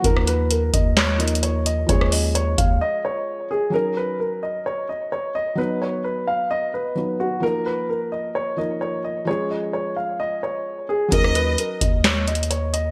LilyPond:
<<
  \new Staff \with { instrumentName = "Violin section" } { \time 4/4 \key ees \minor \tempo 4 = 130 r1 | r1 | r1 | r1 |
r1 | r1 | ees''4 r2. | }
  \new Staff \with { instrumentName = "Grand piano" } { \time 4/4 \key ees \minor bes'8 ces''8 bes'8 ees''8 des''8 ees''8 des''8 ees''8 | des''8 ees''8 des''8 f''8 ees''8 des''4 aes'8 | bes'8 ces''8 bes'8 ees''8 des''8 ees''8 des''8 ees''8 | b'8 des''8 b'8 f''8 dis''8 b'4 fis'8 |
bes'8 ces''8 bes'8 ees''8 des''8 ees''8 des''8 ees''8 | des''8 ees''8 des''8 f''8 ees''8 des''4 aes'8 | bes'8 ces''8 bes'8 ees''8 des''8 ees''8 des''8 ees''8 | }
  \new Staff \with { instrumentName = "Felt piano" } { \time 4/4 \key ees \minor <f bes ees' bes'>2~ <f bes ees' bes'>8 <f bes ees' bes'>4. | <f aes des' aes'>1 | <ges des' ees' bes'>1 | <fis b dis' b'>2. <fis b dis' b'>4 |
<f bes ees' bes'>2~ <f bes ees' bes'>8 <f bes ees' bes'>4. | <f aes des' aes'>1 | <ges des' ees' bes'>1 | }
  \new Staff \with { instrumentName = "808-style bass" } { \clef bass \time 4/4 \key ees \minor ees,4. ees,2~ ees,8 | ees,4. ees,8 r2 | r1 | r1 |
r1 | r1 | ees,4 r8 ees,2~ ees,8 | }
  \new DrumStaff \with { instrumentName = "Drums" } \drummode { \time 4/4 <hh bd>16 ss16 hh8 hh8 <hh bd>8 \tuplet 3/2 { <hc hh sn>16 r16 r16 hh16 hh16 hh16 } hh8 hh8 | <hh bd>16 ss16 hho8 hh8 <hh bd>8 r4 r4 | r4 r4 r4 r4 | r4 r4 r4 r4 |
r4 r4 r4 r4 | r4 r4 r4 r4 | <hh bd>16 ss16 hh8 hh8 <hh bd>8 \tuplet 3/2 { <hc hh sn>16 r16 r16 hh16 hh16 hh16 } hh8 hh8 | }
>>